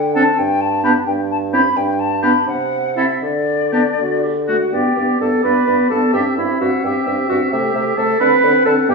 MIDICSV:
0, 0, Header, 1, 6, 480
1, 0, Start_track
1, 0, Key_signature, 1, "major"
1, 0, Tempo, 460123
1, 403, Time_signature, 6, 3, 24, 8
1, 2331, Tempo, 495458
1, 5211, Tempo, 468750
1, 6651, Tempo, 455235
1, 9110, End_track
2, 0, Start_track
2, 0, Title_t, "Flute"
2, 0, Program_c, 0, 73
2, 0, Note_on_c, 0, 79, 57
2, 148, Note_off_c, 0, 79, 0
2, 154, Note_on_c, 0, 81, 61
2, 399, Note_on_c, 0, 79, 63
2, 414, Note_off_c, 0, 81, 0
2, 636, Note_on_c, 0, 81, 59
2, 652, Note_off_c, 0, 79, 0
2, 869, Note_off_c, 0, 81, 0
2, 875, Note_on_c, 0, 83, 57
2, 938, Note_off_c, 0, 83, 0
2, 1114, Note_on_c, 0, 79, 61
2, 1176, Note_off_c, 0, 79, 0
2, 1367, Note_on_c, 0, 81, 63
2, 1430, Note_off_c, 0, 81, 0
2, 1602, Note_on_c, 0, 83, 60
2, 1843, Note_on_c, 0, 79, 60
2, 1859, Note_off_c, 0, 83, 0
2, 2083, Note_on_c, 0, 81, 57
2, 2098, Note_off_c, 0, 79, 0
2, 2322, Note_off_c, 0, 81, 0
2, 2328, Note_on_c, 0, 83, 56
2, 2558, Note_off_c, 0, 83, 0
2, 2568, Note_on_c, 0, 78, 56
2, 3049, Note_on_c, 0, 76, 46
2, 3064, Note_off_c, 0, 78, 0
2, 3292, Note_on_c, 0, 74, 50
2, 3307, Note_off_c, 0, 76, 0
2, 4288, Note_off_c, 0, 74, 0
2, 4509, Note_on_c, 0, 78, 37
2, 4752, Note_on_c, 0, 79, 40
2, 4766, Note_off_c, 0, 78, 0
2, 5206, Note_off_c, 0, 79, 0
2, 5211, Note_on_c, 0, 81, 39
2, 5273, Note_off_c, 0, 81, 0
2, 5442, Note_on_c, 0, 83, 41
2, 5914, Note_off_c, 0, 83, 0
2, 5919, Note_on_c, 0, 81, 45
2, 6165, Note_on_c, 0, 79, 44
2, 6180, Note_off_c, 0, 81, 0
2, 6398, Note_off_c, 0, 79, 0
2, 6404, Note_on_c, 0, 76, 37
2, 6643, Note_on_c, 0, 78, 40
2, 6658, Note_off_c, 0, 76, 0
2, 6892, Note_on_c, 0, 79, 44
2, 6908, Note_off_c, 0, 78, 0
2, 7374, Note_on_c, 0, 78, 41
2, 7389, Note_off_c, 0, 79, 0
2, 7598, Note_off_c, 0, 78, 0
2, 7604, Note_on_c, 0, 79, 38
2, 8079, Note_off_c, 0, 79, 0
2, 8087, Note_on_c, 0, 81, 50
2, 8320, Note_off_c, 0, 81, 0
2, 8326, Note_on_c, 0, 83, 53
2, 8801, Note_off_c, 0, 83, 0
2, 8813, Note_on_c, 0, 81, 54
2, 8876, Note_off_c, 0, 81, 0
2, 9045, Note_on_c, 0, 79, 57
2, 9108, Note_off_c, 0, 79, 0
2, 9110, End_track
3, 0, Start_track
3, 0, Title_t, "Oboe"
3, 0, Program_c, 1, 68
3, 165, Note_on_c, 1, 69, 44
3, 248, Note_off_c, 1, 69, 0
3, 876, Note_on_c, 1, 67, 49
3, 962, Note_off_c, 1, 67, 0
3, 1603, Note_on_c, 1, 67, 42
3, 1687, Note_off_c, 1, 67, 0
3, 2324, Note_on_c, 1, 67, 43
3, 2407, Note_off_c, 1, 67, 0
3, 3043, Note_on_c, 1, 69, 37
3, 3129, Note_off_c, 1, 69, 0
3, 3774, Note_on_c, 1, 67, 36
3, 3860, Note_off_c, 1, 67, 0
3, 4504, Note_on_c, 1, 66, 34
3, 4592, Note_off_c, 1, 66, 0
3, 4743, Note_on_c, 1, 74, 33
3, 4969, Note_off_c, 1, 74, 0
3, 4974, Note_on_c, 1, 74, 28
3, 5195, Note_off_c, 1, 74, 0
3, 5201, Note_on_c, 1, 74, 26
3, 5439, Note_off_c, 1, 74, 0
3, 5445, Note_on_c, 1, 74, 30
3, 5667, Note_off_c, 1, 74, 0
3, 5673, Note_on_c, 1, 74, 26
3, 5906, Note_off_c, 1, 74, 0
3, 5912, Note_on_c, 1, 74, 27
3, 6149, Note_off_c, 1, 74, 0
3, 6155, Note_on_c, 1, 76, 36
3, 6386, Note_off_c, 1, 76, 0
3, 6392, Note_on_c, 1, 76, 27
3, 6635, Note_off_c, 1, 76, 0
3, 6641, Note_on_c, 1, 76, 31
3, 6884, Note_off_c, 1, 76, 0
3, 6895, Note_on_c, 1, 76, 35
3, 7116, Note_off_c, 1, 76, 0
3, 7123, Note_on_c, 1, 76, 28
3, 7360, Note_off_c, 1, 76, 0
3, 7366, Note_on_c, 1, 76, 31
3, 7601, Note_off_c, 1, 76, 0
3, 7607, Note_on_c, 1, 76, 39
3, 7846, Note_off_c, 1, 76, 0
3, 7854, Note_on_c, 1, 76, 31
3, 8089, Note_off_c, 1, 76, 0
3, 8095, Note_on_c, 1, 76, 35
3, 8329, Note_off_c, 1, 76, 0
3, 8337, Note_on_c, 1, 78, 42
3, 8567, Note_off_c, 1, 78, 0
3, 8573, Note_on_c, 1, 78, 36
3, 8809, Note_off_c, 1, 78, 0
3, 8816, Note_on_c, 1, 78, 40
3, 9048, Note_off_c, 1, 78, 0
3, 9063, Note_on_c, 1, 79, 46
3, 9110, Note_off_c, 1, 79, 0
3, 9110, End_track
4, 0, Start_track
4, 0, Title_t, "Clarinet"
4, 0, Program_c, 2, 71
4, 162, Note_on_c, 2, 62, 47
4, 246, Note_off_c, 2, 62, 0
4, 881, Note_on_c, 2, 62, 53
4, 965, Note_off_c, 2, 62, 0
4, 1599, Note_on_c, 2, 64, 41
4, 1684, Note_off_c, 2, 64, 0
4, 2332, Note_on_c, 2, 62, 45
4, 2413, Note_off_c, 2, 62, 0
4, 3041, Note_on_c, 2, 64, 36
4, 3128, Note_off_c, 2, 64, 0
4, 3780, Note_on_c, 2, 62, 37
4, 3864, Note_off_c, 2, 62, 0
4, 4024, Note_on_c, 2, 66, 35
4, 4249, Note_off_c, 2, 66, 0
4, 4263, Note_on_c, 2, 67, 34
4, 4375, Note_off_c, 2, 67, 0
4, 4512, Note_on_c, 2, 66, 42
4, 4750, Note_on_c, 2, 67, 49
4, 4764, Note_off_c, 2, 66, 0
4, 5203, Note_off_c, 2, 67, 0
4, 5209, Note_on_c, 2, 69, 48
4, 5440, Note_off_c, 2, 69, 0
4, 5446, Note_on_c, 2, 71, 46
4, 5913, Note_off_c, 2, 71, 0
4, 5919, Note_on_c, 2, 69, 49
4, 6153, Note_off_c, 2, 69, 0
4, 6159, Note_on_c, 2, 67, 51
4, 6270, Note_off_c, 2, 67, 0
4, 6401, Note_on_c, 2, 64, 43
4, 6638, Note_off_c, 2, 64, 0
4, 6644, Note_on_c, 2, 66, 48
4, 6755, Note_off_c, 2, 66, 0
4, 6892, Note_on_c, 2, 67, 47
4, 7359, Note_off_c, 2, 67, 0
4, 7366, Note_on_c, 2, 66, 46
4, 7476, Note_off_c, 2, 66, 0
4, 7608, Note_on_c, 2, 67, 51
4, 8085, Note_on_c, 2, 69, 62
4, 8101, Note_off_c, 2, 67, 0
4, 8320, Note_off_c, 2, 69, 0
4, 8326, Note_on_c, 2, 71, 61
4, 8793, Note_off_c, 2, 71, 0
4, 8800, Note_on_c, 2, 69, 62
4, 8910, Note_off_c, 2, 69, 0
4, 9044, Note_on_c, 2, 67, 66
4, 9110, Note_off_c, 2, 67, 0
4, 9110, End_track
5, 0, Start_track
5, 0, Title_t, "French horn"
5, 0, Program_c, 3, 60
5, 164, Note_on_c, 3, 60, 46
5, 247, Note_off_c, 3, 60, 0
5, 873, Note_on_c, 3, 59, 46
5, 960, Note_off_c, 3, 59, 0
5, 1599, Note_on_c, 3, 60, 44
5, 1685, Note_off_c, 3, 60, 0
5, 2331, Note_on_c, 3, 59, 43
5, 2412, Note_off_c, 3, 59, 0
5, 3043, Note_on_c, 3, 60, 35
5, 3129, Note_off_c, 3, 60, 0
5, 3774, Note_on_c, 3, 59, 37
5, 3860, Note_off_c, 3, 59, 0
5, 4514, Note_on_c, 3, 57, 30
5, 4598, Note_off_c, 3, 57, 0
5, 4747, Note_on_c, 3, 59, 31
5, 4975, Note_off_c, 3, 59, 0
5, 4980, Note_on_c, 3, 59, 29
5, 5196, Note_off_c, 3, 59, 0
5, 5202, Note_on_c, 3, 59, 30
5, 5442, Note_off_c, 3, 59, 0
5, 5451, Note_on_c, 3, 59, 29
5, 5686, Note_off_c, 3, 59, 0
5, 5694, Note_on_c, 3, 59, 33
5, 5925, Note_off_c, 3, 59, 0
5, 5937, Note_on_c, 3, 59, 29
5, 6167, Note_off_c, 3, 59, 0
5, 6172, Note_on_c, 3, 60, 32
5, 6406, Note_off_c, 3, 60, 0
5, 6414, Note_on_c, 3, 60, 32
5, 6643, Note_off_c, 3, 60, 0
5, 6649, Note_on_c, 3, 60, 30
5, 6878, Note_off_c, 3, 60, 0
5, 6884, Note_on_c, 3, 60, 34
5, 7118, Note_off_c, 3, 60, 0
5, 7125, Note_on_c, 3, 60, 33
5, 7358, Note_off_c, 3, 60, 0
5, 7365, Note_on_c, 3, 60, 35
5, 7605, Note_off_c, 3, 60, 0
5, 7610, Note_on_c, 3, 57, 37
5, 7831, Note_off_c, 3, 57, 0
5, 7838, Note_on_c, 3, 57, 36
5, 8081, Note_off_c, 3, 57, 0
5, 8085, Note_on_c, 3, 57, 39
5, 8324, Note_off_c, 3, 57, 0
5, 8330, Note_on_c, 3, 60, 35
5, 8567, Note_off_c, 3, 60, 0
5, 8577, Note_on_c, 3, 60, 41
5, 8806, Note_off_c, 3, 60, 0
5, 8812, Note_on_c, 3, 60, 39
5, 9031, Note_off_c, 3, 60, 0
5, 9037, Note_on_c, 3, 59, 38
5, 9110, Note_off_c, 3, 59, 0
5, 9110, End_track
6, 0, Start_track
6, 0, Title_t, "Bassoon"
6, 0, Program_c, 4, 70
6, 0, Note_on_c, 4, 50, 47
6, 284, Note_off_c, 4, 50, 0
6, 404, Note_on_c, 4, 43, 51
6, 1001, Note_off_c, 4, 43, 0
6, 1125, Note_on_c, 4, 43, 44
6, 1724, Note_off_c, 4, 43, 0
6, 1847, Note_on_c, 4, 43, 52
6, 2449, Note_off_c, 4, 43, 0
6, 2565, Note_on_c, 4, 48, 43
6, 3168, Note_off_c, 4, 48, 0
6, 3290, Note_on_c, 4, 50, 45
6, 3899, Note_off_c, 4, 50, 0
6, 4022, Note_on_c, 4, 50, 38
6, 4633, Note_off_c, 4, 50, 0
6, 4753, Note_on_c, 4, 43, 35
6, 4856, Note_off_c, 4, 43, 0
6, 4976, Note_on_c, 4, 43, 30
6, 5081, Note_off_c, 4, 43, 0
6, 5211, Note_on_c, 4, 43, 32
6, 5320, Note_off_c, 4, 43, 0
6, 5451, Note_on_c, 4, 43, 34
6, 5559, Note_off_c, 4, 43, 0
6, 5691, Note_on_c, 4, 43, 32
6, 5798, Note_off_c, 4, 43, 0
6, 5927, Note_on_c, 4, 43, 33
6, 6035, Note_off_c, 4, 43, 0
6, 6163, Note_on_c, 4, 43, 40
6, 6273, Note_off_c, 4, 43, 0
6, 6408, Note_on_c, 4, 43, 31
6, 6517, Note_off_c, 4, 43, 0
6, 6648, Note_on_c, 4, 43, 36
6, 6758, Note_off_c, 4, 43, 0
6, 6886, Note_on_c, 4, 43, 36
6, 6996, Note_off_c, 4, 43, 0
6, 7133, Note_on_c, 4, 43, 37
6, 7241, Note_off_c, 4, 43, 0
6, 7378, Note_on_c, 4, 43, 42
6, 7485, Note_off_c, 4, 43, 0
6, 7614, Note_on_c, 4, 48, 43
6, 7722, Note_off_c, 4, 48, 0
6, 7853, Note_on_c, 4, 48, 38
6, 7961, Note_off_c, 4, 48, 0
6, 8093, Note_on_c, 4, 48, 40
6, 8200, Note_off_c, 4, 48, 0
6, 8333, Note_on_c, 4, 50, 40
6, 8441, Note_off_c, 4, 50, 0
6, 8573, Note_on_c, 4, 50, 42
6, 8682, Note_off_c, 4, 50, 0
6, 8814, Note_on_c, 4, 50, 45
6, 8921, Note_off_c, 4, 50, 0
6, 9048, Note_on_c, 4, 43, 55
6, 9110, Note_off_c, 4, 43, 0
6, 9110, End_track
0, 0, End_of_file